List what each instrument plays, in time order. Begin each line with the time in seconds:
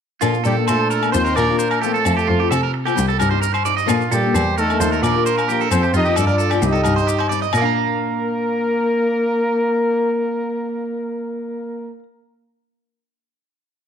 0.21 cello A#2, nylon-string guitar F3 A#3 D4 A4, clean electric guitar F4, low agogo, maracas
0.34 maracas
0.44 cello A#2, nylon-string guitar F3 A#3 D4 A4, horn section G3 A#3 G4, clean electric guitar A4, maracas
0.57 nylon-string guitar A#3 D4 A4
0.67 cello A#2, horn section A3 D4 A4, clean electric guitar C5, low agogo, maracas
0.90 clean electric guitar A#4, maracas
1.01 nylon-string guitar A#3 D4 A4, low agogo, maracas
1.12 cello D#2, nylon-string guitar F3 A#3 F4 G4, horn section C4 D#4 C5, clean electric guitar C5, maracas
1.25 clean electric guitar A#4, maracas
1.36 cello A#2, nylon-string guitar F3 A#3 F4 G4, horn section A#3 D4 A#4, clean electric guitar D5, low agogo, maracas
1.49 nylon-string guitar A#3 F4 G4
1.59 clean electric guitar C5, maracas
1.71 clean electric guitar A#4, low agogo, maracas
1.80 nylon-string guitar F3, horn section A3 C4 A4, clean electric guitar G4, maracas
1.84 nylon-string guitar A#3 F4, muted nylon-string guitar stroke
1.94 clean electric guitar A4, maracas
2.05 cello F2, nylon-string guitar F3 C4 F4 A4, low agogo, maracas
2.17 clean electric guitar G4, maracas
2.27 cello F2, nylon-string guitar F3 C4 F4 A4, clean electric guitar F4
2.40 nylon-string guitar C4 F4 A4, clean electric guitar G4
2.51 cello C3, clean electric guitar A4, low agogo, maracas
2.63 clean electric guitar A#4
2.74 muted clean electric guitar stroke
2.85 nylon-string guitar C4 F4 A4, clean electric guitar G4, low agogo, maracas
2.96 cello C2, nylon-string guitar G3 C4 G4, muted nylon-string guitar stroke, maracas
3.08 clean electric guitar A4, maracas
3.19 cello G2, nylon-string guitar G3 C4 D#4 G4, clean electric guitar A#4, low agogo, maracas
3.31 nylon-string guitar C4 D#4 G4, clean electric guitar C5
3.42 clean electric guitar A#4, maracas
3.54 clean electric guitar C5, low agogo, maracas
3.65 nylon-string guitar G3 C4 D#4 G4, clean electric guitar D5, maracas
3.77 clean electric guitar D#5, maracas
3.86 cello A#2, nylon-string guitar F3 A#3 D4 A4, clean electric guitar F4, low agogo, maracas
4.01 maracas
4.09 cello A#2, nylon-string guitar F3 A#3 D4 A4, horn section G3 A#3 G4, clean electric guitar A4, maracas
4.23 nylon-string guitar A#3 D4 A4
4.34 cello E2, clean electric guitar C5, low agogo, maracas
4.58 horn section A3 D#4 A4, clean electric guitar A#4, maracas
4.69 nylon-string guitar A#3 D4 A4, low agogo, maracas
4.80 cello D#2, nylon-string guitar F3 A#3 F4 G4, clean electric guitar C5, maracas
4.92 clean electric guitar A#4, maracas
5.02 cello A#2, nylon-string guitar F3 A#3 F4 G4, horn section A#3 D4 A#4, clean electric guitar D5, low agogo, maracas
5.15 nylon-string guitar F4 G4, muted nylon-string guitar stroke
5.26 clean electric guitar C5, maracas
5.38 clean electric guitar A#4, low agogo, maracas
5.48 nylon-string guitar F3 F4 G4, clean electric guitar G4, maracas
5.61 clean electric guitar A4, maracas
5.71 cello F2, nylon-string guitar F3 C4 F4, horn section C4 F4 C5, low agogo, maracas
5.75 nylon-string guitar A4
5.83 clean electric guitar G4, maracas
5.93 cello F2, nylon-string guitar F3 C4 F4 A4, horn section D#4 G4 D#5, clean electric guitar F4, maracas
6.05 nylon-string guitar F4 A4, clean electric guitar G4, maracas
6.10 nylon-string guitar C4
6.16 cello G2, horn section D4 F4 D5, clean electric guitar A4, low agogo, maracas
6.27 clean electric guitar A#4, maracas
6.38 clean electric guitar A4, maracas
6.50 nylon-string guitar F4 A4, clean electric guitar G4, low agogo, maracas
6.55 nylon-string guitar C4
6.62 cello C2, nylon-string guitar G3 C4 D#4, horn section G4, maracas
6.66 horn section D#4 D#5
6.72 clean electric guitar A4, maracas
6.83 cello G2, nylon-string guitar G3 C4 D#4, clean electric guitar A#4, low agogo, maracas
6.96 nylon-string guitar D#4, clean electric guitar C5, maracas
7.07 clean electric guitar G4, maracas
7.19 clean electric guitar C5, low agogo
7.29 nylon-string guitar G3 C4 D#4, clean electric guitar D5, maracas
7.42 clean electric guitar D#5, maracas
7.51 cello A#2, clean electric guitar A#4, muted nylon-string guitar stroke, low agogo, maracas
7.55 horn section A#3 A#4, clean electric guitar D5
7.61 nylon-string guitar D4, clean electric guitar F5 A#5